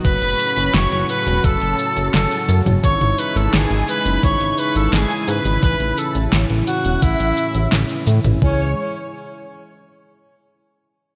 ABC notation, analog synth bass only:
X:1
M:4/4
L:1/16
Q:1/4=86
K:C#m
V:1 name="Analog synth bass" clef=bass
F,,, F,,, z F,,, F,,, F,,, z E,,, F,,, F,,, z F,,, F,,, z F,, F,,, | G,,, G,,, z G,,, G,,, G,,, z F,,, G,,, G,,, z G,,, G,,, z G,, G,,, | A,,, A,,, z A,,, A,,, A,,, z E,,, A,,, A,,, z A,,, A,,, z A,, A,,, | C,,2 z12 z2 |]